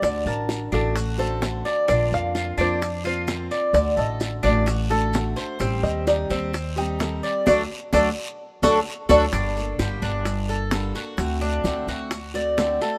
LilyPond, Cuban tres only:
\new Staff \with { instrumentName = "Cuban tres" } { \time 4/4 \key d \phrygian \tempo 4 = 129 d''8 a''4 d'8 fis'8 a'4 d''8 | d'4 f'8 d'4 f'4 d''8~ | d''8 a'4 d'8 fis'8 a'4 c''8 | c'4 ees'8 c'4 ees'4 d''8 |
<d' fis' a'>8 r8 <d' fis' a'>8 r4 <d' fis' a'>8 r8 <d' fis' a'>8 | \key g \minor d'4 g'8 d'4 a'4 fis'8~ | fis'8 d'4 fis'4 d''4 a'8 | }